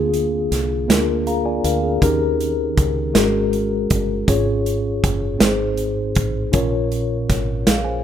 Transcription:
0.00 0.47 D2 medium
0.00 0.85 D3 medium
0.00 0.59 A#3 medium
0.00 0.59 D4 medium
0.00 0.60 F4 medium
0.00 0.63 G#4 medium
0.14 closed hi-hat soft
0.51 0.86 C2 medium
0.51 snare soft
0.51 closed hi-hat medium
0.88 1.60 D2 medium
0.88 1.72 A#3 medium
0.88 1.27 D4 medium
0.88 1.27 F4 medium
0.88 1.27 A#4 medium
0.88 snare loud
0.88 closed hi-hat medium
1.27 1.45 G#4 soft
1.27 1.45 F5 medium
1.27 1.44 A#5 medium
1.27 closed hi-hat soft
1.45 1.64 F4 medium
1.45 1.63 D5 medium
1.45 1.63 G#5 medium
1.64 1.99 D2 medium
1.64 1.83 D4 medium
1.64 1.83 A#4 medium
1.64 1.99 F5 medium
1.64 closed hi-hat medium
1.83 2.19 C4 soft
1.83 2.19 G#4 medium
2.01 2.73 D#2 medium
2.01 3.11 D#3 medium
2.01 2.85 C#4 medium
2.01 2.85 D#4 medium
2.01 2.86 G4 medium
2.01 2.86 A#4 medium
2.01 kick medium
2.01 closed hi-hat medium
2.41 closed hi-hat soft
2.77 3.12 C#2 medium
2.77 kick medium
2.77 closed hi-hat medium
3.13 3.86 G#1 medium
3.13 4.23 G#3 medium
3.13 3.21 C4 medium
3.13 3.98 F#4 medium
3.13 3.98 G#4 medium
3.13 3.98 A#4 medium
3.13 snare loud
3.13 closed hi-hat loud
3.20 4.01 C#4 medium
3.53 closed hi-hat soft
3.90 4.25 G1 medium
3.90 kick medium
3.90 closed hi-hat medium
4.28 4.99 G#1 medium
4.28 5.37 G#2 medium
4.28 5.11 C#4 medium
4.28 5.11 F4 medium
4.28 5.11 G#4 medium
4.28 5.12 C#5 medium
4.28 kick medium
4.28 closed hi-hat medium
4.66 closed hi-hat soft
5.04 5.38 F#1 medium
5.04 kick medium
5.04 closed hi-hat medium
5.39 6.12 G#1 medium
5.39 6.49 G#2 medium
5.39 6.23 C4 medium
5.39 6.23 D#4 medium
5.39 6.24 G#4 medium
5.39 6.24 C5 medium
5.39 snare loud
5.39 closed hi-hat medium
5.77 closed hi-hat soft
6.15 6.51 A1 medium
6.15 kick medium
6.15 closed hi-hat medium
6.52 7.25 A#1 medium
6.52 7.62 A#2 medium
6.52 7.36 C#4 medium
6.52 7.36 F4 medium
6.52 7.37 A#4 medium
6.52 7.37 C#5 medium
6.52 kick medium
6.52 closed hi-hat medium
6.92 closed hi-hat soft
7.30 7.64 G#1 medium
7.30 kick medium
7.30 snare soft
7.30 closed hi-hat medium
7.67 8.04 A#1 medium
7.67 7.85 G#4 soft
7.67 7.84 F5 medium
7.67 snare loud
7.67 closed hi-hat loud
7.84 8.03 C5 soft
7.84 8.03 G#5 medium

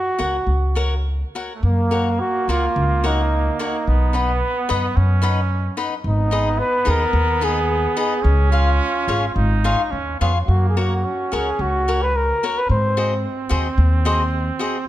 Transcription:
0.00 1.03 F#4 medium
0.18 0.38 C#2 medium
0.18 0.35 F#4 medium
0.18 0.36 A#4 medium
0.18 0.36 C#5 medium
0.18 0.36 F#5 medium
0.47 1.22 C#2 medium
0.75 0.93 F#4 medium
0.75 0.93 A#4 medium
0.75 0.93 C#5 medium
0.75 0.94 F#5 medium
1.35 1.52 F#4 medium
1.35 1.52 A#4 medium
1.35 1.52 C#5 medium
1.35 1.52 F#5 medium
1.56 1.65 A3 soft
1.63 2.18 F#2 medium
1.63 3.90 A#3 medium
1.63 2.21 A#3 medium
1.91 2.08 F#4 medium
1.91 2.08 A#4 medium
1.91 2.08 C#5 medium
1.91 2.08 F#5 medium
2.20 2.51 F#4 medium
2.48 2.66 C#2 medium
2.48 3.08 F4 medium
2.48 2.65 F#4 medium
2.48 2.65 A#4 medium
2.48 2.65 C#5 medium
2.48 2.65 F#5 medium
2.76 3.48 C#2 loud
3.04 3.60 D#4 medium
3.04 3.20 F#4 medium
3.04 3.20 A#4 medium
3.04 3.20 C#5 medium
3.04 3.21 F#5 medium
3.59 4.17 D#4 medium
3.59 3.76 F#4 medium
3.59 3.76 A#4 medium
3.59 3.76 C#5 medium
3.59 3.76 F#5 medium
3.87 4.41 B1 medium
3.87 4.98 B3 loud
4.13 5.24 B3 medium
4.13 4.30 D#4 medium
4.13 4.30 B4 medium
4.13 4.31 D#5 medium
4.13 4.31 F#5 medium
4.69 4.87 F#2 medium
4.69 4.85 D#4 medium
4.69 4.85 B4 loud
4.69 4.86 D#5 medium
4.69 4.86 F#5 loud
4.96 5.67 F#2 medium
4.96 5.79 C#4 medium
5.22 5.39 D#4 medium
5.22 5.39 B4 medium
5.22 5.39 D#5 loud
5.22 5.40 F#5 loud
5.77 5.93 D#4 medium
5.77 5.94 B4 medium
5.77 5.94 D#5 medium
5.77 5.94 F#5 medium
6.04 6.58 G#1 medium
6.04 8.24 B3 loud
6.04 6.61 D#4 medium
6.31 6.48 D#4 medium
6.31 6.48 G#4 medium
6.31 6.48 B4 medium
6.31 6.48 D#5 medium
6.59 6.91 B4 loud
6.85 7.04 D#2 medium
6.85 7.02 D#4 medium
6.85 7.02 G#4 medium
6.85 7.02 B4 medium
6.85 7.03 D#5 loud
6.90 7.46 A#4 medium
7.13 7.85 D#2 loud
7.41 7.58 D#4 medium
7.41 7.58 G#4 medium
7.41 7.98 G#4 medium
7.41 7.58 B4 medium
7.41 7.58 D#5 medium
7.96 8.13 D#4 medium
7.96 8.13 G#4 medium
7.96 8.49 G#4 medium
7.96 8.13 B4 loud
7.96 8.13 D#5 medium
8.22 8.79 C#2 loud
8.22 9.34 C#4 loud
8.52 9.59 F4 medium
8.52 8.68 F4 medium
8.52 8.68 G#4 medium
8.52 8.69 C#5 medium
8.52 8.69 F5 medium
9.08 9.25 G#1 medium
9.08 9.24 F4 medium
9.08 9.24 G#4 medium
9.08 9.24 C#5 medium
9.08 9.25 F5 medium
9.35 9.72 G#1 loud
9.35 9.93 D#4 medium
9.64 9.81 F4 medium
9.64 9.81 G#4 medium
9.64 9.81 C#5 medium
9.64 9.81 F5 medium
9.91 10.18 D#2 medium
9.91 10.20 C#4 medium
10.21 10.45 F2 medium
10.21 10.33 B3 medium
10.21 10.37 F4 medium
10.21 10.37 G#4 medium
10.21 10.37 C#5 medium
10.21 10.38 F5 medium
10.47 11.03 F#2 medium
10.47 11.06 A#3 medium
10.47 10.68 F#4 medium
10.69 10.79 G#4 medium
10.77 10.93 F#4 medium
10.77 11.34 F#4 medium
10.77 10.93 A#4 medium
10.77 10.93 C#5 medium
10.77 10.93 F#5 medium
11.05 12.44 C#4 medium
11.32 11.50 C#2 medium
11.32 11.48 F#4 medium
11.32 11.63 G#4 medium
11.32 11.49 A#4 medium
11.32 11.49 C#5 medium
11.32 11.49 F#5 medium
11.59 12.31 C#2 medium
11.59 12.04 F#4 medium
11.88 12.04 F#4 medium
11.88 12.04 A#4 medium
11.88 12.04 C#5 medium
11.88 12.04 F#5 medium
12.02 12.18 B4 medium
12.16 12.60 A#4 loud
12.43 12.59 F#4 medium
12.43 12.59 A#4 medium
12.43 12.59 C#5 medium
12.43 12.59 F#5 medium
12.58 12.70 B4 medium
12.69 13.23 G#2 medium
12.69 14.83 C4 medium
12.69 13.20 C5 medium
12.97 13.13 F#4 medium
12.97 13.13 G#4 medium
12.97 13.13 C5 medium
12.97 13.14 D#5 medium
13.49 13.68 D#2 medium
13.49 13.66 F#4 medium
13.49 13.67 G#4 medium
13.49 13.67 C5 medium
13.49 13.67 D#5 loud
13.78 14.49 D#2 loud
14.05 14.22 F#4 medium
14.05 14.22 G#4 medium
14.05 14.22 C5 loud
14.05 14.22 D#5 medium
14.59 14.76 F#4 medium
14.59 14.77 G#4 medium
14.59 14.77 C5 medium
14.59 14.76 D#5 medium

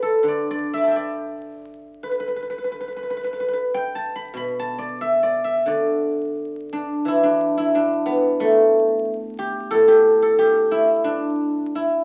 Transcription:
0.00 0.41 G4 medium
0.00 2.22 A4 medium
0.00 1.86 B4 medium
0.00 0.28 D5 medium
0.23 2.34 D3 soft
0.28 0.50 D5 medium
0.51 0.96 D5 medium
0.73 0.91 E5 medium
0.73 1.99 D6 soft
0.81 2.28 A5 soft
0.81 2.16 B5 soft
0.88 2.63 E5 medium
0.88 2.43 G5 soft
0.96 2.81 D5 medium
2.03 2.11 B4 medium
2.11 2.19 B4 soft
2.20 2.27 B4 medium
2.28 2.36 B4 soft
2.36 2.42 B4 soft
2.43 2.49 B4 soft
2.50 2.58 B4 soft
2.58 2.64 B4 soft
2.64 2.71 B4 soft
2.72 2.80 B4 soft
2.81 2.87 B4 soft
2.88 2.96 B4 soft
2.96 3.03 B4 soft
3.03 3.10 B4 soft
3.10 3.16 B4 soft
3.17 3.24 B4 soft
3.24 3.32 B4 medium
3.33 3.40 B4 soft
3.40 3.48 B4 medium
3.48 3.53 B4 soft
3.53 5.58 B4 medium
3.74 5.30 G5 medium
3.95 4.59 A5 medium
4.16 4.36 B5 medium
4.34 5.67 B2 medium
4.34 5.72 B5 medium
4.59 6.04 A5 medium
4.78 5.22 D5 medium
5.01 5.44 E5 medium
5.23 5.67 D5 medium
5.44 7.16 E5 medium
5.66 7.74 D3 soft
5.66 7.52 D5 medium
6.73 7.23 D4 medium
7.05 9.07 E3 medium
7.05 7.57 E4 medium
7.23 7.74 D4 medium
7.58 10.18 E4 medium
7.75 10.55 D4 medium
8.06 11.16 B3 medium
8.40 11.73 A3 medium
9.39 9.87 G4 medium
9.71 11.77 A2 medium
9.71 10.22 A4 loud
9.88 10.38 G4 medium
10.22 12.04 A4 medium
10.39 12.04 G4 loud
10.71 11.75 E4 medium
11.04 12.04 D4 medium
11.75 12.04 E4 medium

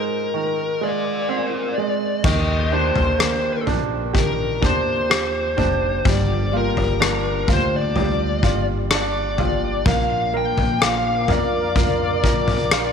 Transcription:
0.00 2.20 G#2 medium
0.00 0.81 G#3 soft
0.00 1.25 D#4 soft
0.00 1.74 A#4 medium
0.34 2.20 D#3 soft
0.81 1.76 G#3 soft
0.81 2.24 D5 medium
1.29 2.21 C4 soft
1.78 2.23 G#3 soft
2.23 2.92 D#2 medium
2.23 2.71 D#3 medium
2.23 6.01 D#3 medium
2.23 2.71 A#3 medium
2.23 2.70 G4 medium
2.23 2.73 D#5 medium
2.23 kick loud
2.23 floor tom medium
2.23 crash medium
2.71 3.17 D#3 soft
2.71 3.18 A#3 soft
2.71 3.19 D4 medium
2.71 3.65 D4 soft
2.71 3.19 G4 medium
2.71 3.63 C5 medium
2.96 3.63 D#2 medium
2.96 floor tom medium
3.18 3.67 D#3 medium
3.18 5.05 A#3 soft
3.18 3.67 A#3 medium
3.18 3.66 D4 medium
3.18 3.64 G4 medium
3.18 cross-stick medium
3.66 4.58 A#1 medium
3.66 4.13 A#3 soft
3.66 4.60 D4 soft
3.66 4.14 D4 soft
3.66 4.14 G4 soft
3.66 floor tom medium
4.13 4.62 D#3 medium
4.13 4.62 A#3 medium
4.13 4.61 D4 medium
4.13 5.08 G4 soft
4.13 4.60 G4 medium
4.13 kick medium
4.13 floor tom medium
4.18 4.65 A#4 medium
4.61 5.54 D#2 medium
4.61 5.59 A#3 soft
4.61 5.56 D4 soft
4.61 5.57 D4 soft
4.61 5.56 G4 soft
4.61 kick medium
4.65 6.11 C5 medium
5.10 6.02 G4 soft
5.10 cross-stick loud
5.56 6.02 F1 medium
5.56 6.04 A#3 soft
5.56 6.03 D4 soft
5.56 6.04 D4 soft
5.56 6.04 G4 soft
5.56 floor tom medium
6.04 6.73 G1 medium
6.04 6.52 G2 medium
6.04 6.52 D3 medium
6.04 6.51 F3 medium
6.04 7.94 G3 medium
6.04 6.51 A#3 medium
6.04 6.51 D4 medium
6.04 6.50 G4 medium
6.04 kick medium
6.04 floor tom medium
6.09 6.56 D5 medium
6.51 6.97 G2 medium
6.51 6.98 D3 soft
6.51 6.98 F3 medium
6.51 6.99 A#3 medium
6.51 6.99 D4 medium
6.51 7.47 F4 soft
6.51 7.00 G4 medium
6.57 7.52 A#4 medium
6.77 7.44 G1 medium
6.77 floor tom medium
6.99 7.47 G2 medium
6.99 7.47 D3 medium
6.99 7.47 F3 medium
6.99 7.47 A#3 medium
6.99 8.87 D4 soft
6.99 7.46 D4 medium
6.99 7.45 G4 medium
6.99 cross-stick medium
7.46 8.39 D2 medium
7.46 7.92 F3 soft
7.46 7.94 A#3 soft
7.46 7.95 D4 soft
7.46 8.43 F4 soft
7.46 7.95 G4 soft
7.46 kick medium
7.46 floor tom medium
7.53 7.75 C5 medium
7.76 8.65 D5 medium
7.94 8.42 F3 medium
7.94 9.82 G3 soft
7.94 8.42 A#3 medium
7.94 8.42 D4 medium
7.94 8.40 G4 medium
7.94 floor tom medium
8.42 9.82 G1 medium
8.42 9.39 F3 soft
8.42 9.38 A#3 soft
8.42 9.38 D4 soft
8.42 9.37 F4 soft
8.42 9.36 G4 soft
8.42 kick medium
8.91 9.83 D4 soft
8.91 cross-stick loud
8.95 9.89 D5 medium
9.37 9.84 F3 soft
9.37 9.84 A#3 soft
9.37 9.85 D4 soft
9.37 9.85 F4 soft
9.37 9.85 G4 soft
9.37 floor tom medium
9.84 10.53 A#1 medium
9.84 10.33 A#2 medium
9.84 10.32 F3 medium
9.84 10.32 A#3 medium
9.84 11.76 A#3 medium
9.84 10.32 D4 medium
9.84 10.31 F4 medium
9.84 12.93 A#4 medium
9.84 11.74 F5 medium
9.84 12.93 D6 medium
9.84 kick loud
9.84 floor tom loud
9.89 10.32 F5 medium
10.32 10.79 A#2 soft
10.32 10.79 F3 medium
10.32 10.80 A#3 medium
10.32 10.80 D4 medium
10.32 10.81 F4 medium
10.32 11.28 A#4 soft
10.37 10.84 G5 medium
10.57 11.25 A#1 medium
10.57 floor tom medium
10.80 11.28 A#2 medium
10.80 11.28 F3 medium
10.80 11.29 A#3 medium
10.80 11.27 D4 medium
10.80 12.68 F4 soft
10.80 11.26 F4 medium
10.80 cross-stick loud
10.84 11.31 F5 medium
11.27 12.20 F2 medium
11.27 11.75 D4 soft
11.27 11.75 F4 soft
11.27 12.22 A#4 soft
11.27 floor tom medium
11.32 12.25 D5 medium
11.75 12.23 F3 medium
11.75 12.24 A#3 medium
11.75 12.93 A#3 soft
11.75 12.23 D4 medium
11.75 12.21 F4 medium
11.75 12.93 G5 medium
11.75 kick medium
11.75 floor tom medium
12.22 12.93 A#1 medium
12.22 12.93 A#3 soft
12.22 12.93 D4 soft
12.22 12.93 F4 soft
12.22 12.93 A#4 soft
12.22 12.93 D5 medium
12.22 kick medium
12.48 floor tom medium
12.71 12.93 F4 medium
12.71 cross-stick loud

